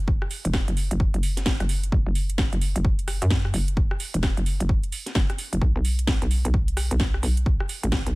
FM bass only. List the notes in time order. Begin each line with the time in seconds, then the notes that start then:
Already playing: F#1
0.45 E1
0.68 F#1
0.91 F#1
1.14 F#1
1.60 F#1
1.92 F#1
2.06 F#1
2.53 F#1
2.76 F#1
3.22 F#2
3.54 F#1
4.14 E1
4.37 F#1
4.60 F#1
5.15 F#1
5.53 F#1
5.62 B1
5.76 B1
6.22 B1
6.45 B1
6.91 B1
7.23 B1
7.83 A1
8.06 B1